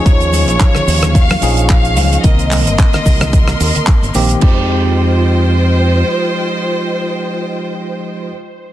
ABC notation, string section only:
X:1
M:4/4
L:1/8
Q:"Swing 16ths" 1/4=110
K:Fm
V:1 name="String section"
[A,fd']8 | [Bec']8 | [Feg]8- | [Feg]8 |]